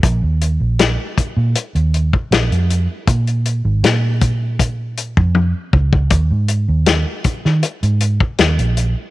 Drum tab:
HH |x-x-x-x-xxx-xxx-|xxx-x-x-x-x-----|x-x-x-x-xxx-xxx-|
SD |----o-------o---|----o-----------|----o--o----o---|
T1 |----------------|------------o---|----------------|
BD |o-----o----o----|o-----o-o--o--oo|o-----o----o----|